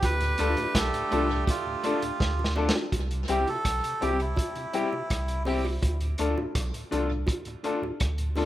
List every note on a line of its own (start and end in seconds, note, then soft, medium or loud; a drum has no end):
0.02 0.35 D2 loud
0.02 2.52 D3 medium
0.02 2.52 A3 medium
0.02 2.52 G4 medium
0.02 0.78 B4 loud
0.02 kick loud
0.02 closed hi-hat medium
0.02 high bongo medium
0.21 0.31 D2 medium
0.21 0.31 A2 medium
0.21 closed hi-hat medium
0.38 0.56 D2 loud
0.38 0.57 A3 medium
0.38 0.49 A3 medium
0.38 0.57 D4 medium
0.38 0.52 D4 loud
0.38 0.49 D4 medium
0.38 0.57 F4 medium
0.38 0.50 F4 medium
0.38 0.53 F4 medium
0.38 0.58 A4 medium
0.38 0.53 A4 loud
0.38 closed hi-hat medium
0.57 0.67 D2 medium
0.57 0.67 A2 medium
0.57 closed hi-hat medium
0.57 high bongo medium
0.75 0.91 B1 loud
0.75 1.44 A4 medium
0.75 kick loud
0.75 snare loud
0.75 closed hi-hat loud
0.93 1.04 D2 medium
0.93 1.04 A2 medium
0.93 closed hi-hat medium
1.11 1.44 C2 medium
1.11 1.29 A3 medium
1.11 1.22 A3 medium
1.11 1.25 D4 medium
1.11 1.30 D4 medium
1.11 1.22 D4 medium
1.11 1.22 F4 medium
1.11 1.25 F4 medium
1.11 1.29 F4 medium
1.11 1.25 A4 loud
1.11 1.29 A4 medium
1.11 closed hi-hat medium
1.11 high bongo soft
1.11 low bongo medium
1.29 1.40 D2 medium
1.29 1.40 A2 medium
1.29 muted clean electric guitar stroke soft
1.47 2.53 F4 medium
1.47 kick loud
1.47 closed hi-hat medium
1.47 high bongo medium
1.65 1.76 D2 medium
1.65 1.76 A2 medium
1.83 2.02 A3 medium
1.83 1.94 A3 medium
1.83 2.02 D4 medium
1.83 1.97 D4 medium
1.83 1.95 D4 medium
1.83 1.98 F4 medium
1.83 1.95 F4 medium
1.83 2.03 F4 medium
1.83 1.98 A4 loud
1.83 2.03 A4 medium
1.83 closed hi-hat medium
2.02 2.13 D2 medium
2.02 2.13 A2 medium
2.02 closed hi-hat medium
2.20 2.71 D2 loud
2.20 kick loud
2.20 snare medium
2.39 2.49 D2 medium
2.39 2.49 A2 medium
2.39 high bongo soft
2.44 snare medium
2.56 2.74 A3 medium
2.56 2.67 A3 medium
2.56 2.70 D4 medium
2.56 2.75 D4 medium
2.56 2.67 D4 medium
2.56 2.75 F4 medium
2.56 2.70 F4 medium
2.56 2.67 F4 medium
2.56 2.75 A4 loud
2.56 2.70 A4 loud
2.56 low bongo medium
2.69 snare loud
2.75 2.82 F4 soft
2.75 2.82 A4 soft
2.75 high bongo medium
2.92 3.25 C2 loud
2.92 kick loud
2.92 closed hi-hat medium
2.92 high bongo medium
3.11 3.22 C3 medium
3.11 closed hi-hat medium
3.28 3.45 C2 loud
3.28 3.47 G3 medium
3.28 3.40 G3 medium
3.28 3.42 C4 medium
3.28 3.47 C4 medium
3.28 3.40 C4 medium
3.28 3.47 E4 medium
3.28 3.42 E4 medium
3.28 3.40 E4 medium
3.28 3.43 G4 loud
3.28 3.48 G4 medium
3.28 3.49 G4 medium
3.28 closed hi-hat medium
3.47 3.58 C3 medium
3.47 4.04 A4 loud
3.47 closed hi-hat soft
3.47 high bongo medium
3.65 3.81 B1 medium
3.65 kick loud
3.65 cross-stick loud
3.65 closed hi-hat loud
3.84 3.94 C3 medium
3.84 closed hi-hat medium
4.01 4.34 C2 medium
4.01 4.19 G3 medium
4.01 4.12 G3 medium
4.01 4.15 C4 medium
4.01 4.20 C4 medium
4.01 4.12 C4 medium
4.01 4.20 E4 medium
4.01 4.15 E4 medium
4.01 4.12 E4 medium
4.01 4.20 G4 loud
4.01 4.15 G4 loud
4.01 4.20 G4 medium
4.01 closed hi-hat medium
4.01 high bongo soft
4.01 low bongo medium
4.20 4.30 C3 medium
4.20 5.43 E4 medium
4.20 closed hi-hat soft
4.36 kick loud
4.36 closed hi-hat medium
4.36 high bongo medium
4.55 4.66 C3 medium
4.55 muted clean electric guitar stroke medium
4.55 closed hi-hat soft
4.73 4.84 G3 medium
4.73 4.92 G3 medium
4.73 4.87 C4 medium
4.73 4.85 C4 medium
4.73 4.93 C4 medium
4.73 4.88 E4 medium
4.73 4.85 E4 medium
4.73 4.93 E4 medium
4.73 4.88 G4 loud
4.73 4.93 G4 medium
4.73 closed hi-hat medium
4.92 5.03 C3 medium
4.92 high bongo medium
5.10 5.79 C2 medium
5.10 kick loud
5.10 cross-stick loud
5.10 closed hi-hat medium
5.28 5.39 C3 medium
5.28 closed hi-hat medium
5.45 5.57 G3 medium
5.45 5.65 G3 medium
5.45 5.60 C4 medium
5.45 5.57 C4 medium
5.45 5.65 C4 medium
5.45 5.60 E4 medium
5.45 5.57 E4 medium
5.45 5.66 E4 medium
5.45 5.60 G4 medium
5.45 5.66 G4 medium
5.45 open hi-hat medium
5.45 low bongo medium
5.65 high bongo medium
5.82 6.15 D2 loud
5.82 kick loud
5.82 closed hi-hat medium
5.82 high bongo medium
6.00 6.11 D2 medium
6.00 6.11 A2 soft
6.00 closed hi-hat medium
6.18 6.36 D2 loud
6.18 6.30 A3 medium
6.18 6.38 A3 medium
6.18 6.32 D4 medium
6.18 6.30 D4 medium
6.18 6.38 D4 medium
6.18 6.33 F4 medium
6.18 6.30 F4 medium
6.18 6.38 F4 medium
6.18 6.33 A4 loud
6.18 6.39 A4 medium
6.18 closed hi-hat medium
6.37 6.48 D2 medium
6.37 6.48 A2 medium
6.37 high bongo medium
6.55 6.72 B1 loud
6.55 kick loud
6.55 cross-stick loud
6.55 closed hi-hat loud
6.73 6.84 D2 medium
6.73 6.84 A2 medium
6.73 closed hi-hat medium
6.91 7.25 C2 medium
6.91 7.02 A3 medium
6.91 7.10 A3 medium
6.91 7.02 D4 medium
6.91 7.05 D4 medium
6.91 7.11 D4 medium
6.91 7.02 F4 medium
6.91 7.05 F4 medium
6.91 7.11 F4 medium
6.91 7.06 A4 loud
6.91 7.11 A4 medium
6.91 closed hi-hat medium
6.91 high bongo soft
6.91 low bongo medium
7.09 7.20 D2 medium
7.09 7.20 A2 medium
7.27 kick loud
7.27 closed hi-hat medium
7.27 high bongo medium
7.45 7.56 D2 medium
7.45 7.56 A2 medium
7.45 muted clean electric guitar stroke soft
7.45 closed hi-hat soft
7.63 7.74 A3 medium
7.63 7.83 A3 medium
7.63 7.75 D4 medium
7.63 7.78 D4 medium
7.63 7.83 D4 medium
7.63 7.75 F4 medium
7.63 7.78 F4 medium
7.63 7.83 F4 medium
7.63 7.78 A4 loud
7.63 7.84 A4 medium
7.63 closed hi-hat medium
7.82 7.93 D2 medium
7.82 7.93 A2 medium
7.82 high bongo medium
8.00 8.45 D2 medium
8.00 kick loud
8.00 cross-stick loud
8.00 closed hi-hat medium
8.18 8.29 D2 medium
8.18 8.29 A2 medium
8.18 closed hi-hat medium
8.35 8.45 A3 medium
8.35 8.45 D4 medium
8.35 8.45 F4 medium
8.35 8.45 A4 loud
8.35 8.45 A4 medium
8.35 open hi-hat medium
8.35 low bongo medium